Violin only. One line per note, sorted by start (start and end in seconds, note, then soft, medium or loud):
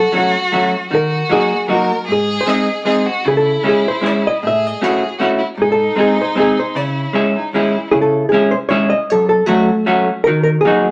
0.00 0.88 F#4 medium
0.89 1.64 F#4 medium
1.68 2.05 A#4 medium
2.07 2.81 G#4 loud
2.85 3.07 G#4 medium
3.06 3.26 F#4 medium
3.24 4.42 E4 medium
4.42 5.16 G#4 medium
5.18 5.28 F#4 medium
5.38 5.47 E4 medium
5.56 6.77 D#4 medium
6.75 7.16 E4 medium
7.15 7.36 C#4 medium
7.36 7.53 D#4 medium
7.54 7.90 E4 medium